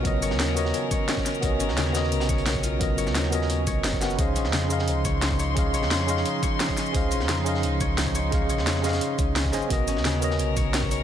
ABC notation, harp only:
X:1
M:4/4
L:1/16
Q:1/4=174
K:Db
V:1 name="Harp"
z2 d2 z2 D z3 d z3 D z | z2 D2 D,2 z4 d z3 F z | z2 d2 z2 D z3 d z3 D z | z2 D2 D,2 z4 d z3 d2 |
z2 d2 z2 D z3 d z3 D z | z2 D2 D,2 z4 d z3 d2 | z2 d2 z2 D z4 z D2 z2 | z2 D2 D,2 z4 d z3 d2 |]